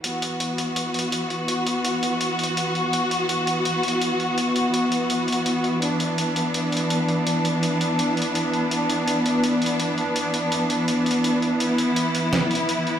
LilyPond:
<<
  \new Staff \with { instrumentName = "String section" } { \time 4/4 \key c \lydian \tempo 4 = 166 << { fis'1~ | fis'1~ | fis'1~ | fis'1 |
d'1~ | d'1~ | d'1~ | d'1 |
e'1 | } \\ { <e b>1~ | <e b>1~ | <e b>1~ | <e b>1~ |
<e b>1~ | <e b>1~ | <e b>1~ | <e b>1~ |
<e b>1 | } >> }
  \new DrumStaff \with { instrumentName = "Drums" } \drummode { \time 4/4 hh8 hh8 hh8 hh8 hh8 hh32 hh16. hh8 hh8 | hh8 hh8 hh8 hh8 hh8 hh32 hh16. hh8 hh8 | hh8 hh8 hh8 hh8 hh8 hh32 hh16. hh8 hh8 | hh8 hh8 hh8 hh8 hh8 hh32 hh16. hh8 hh8 |
hh8 hh8 hh8 hh8 hh8 hh32 hh16. hh8 hh8 | hh8 hh8 hh8 hh8 hh8 hh32 hh16. hh8 hh8 | hh8 hh8 hh8 hh8 hh8 hh32 hh16. hh8 hh8 | hh8 hh8 hh8 hh8 hh8 hh32 hh16. hh8 hh8 |
hh8 hh8 hh8 hh8 <hh sn>8 hh32 hh16. hh8 hh8 | }
>>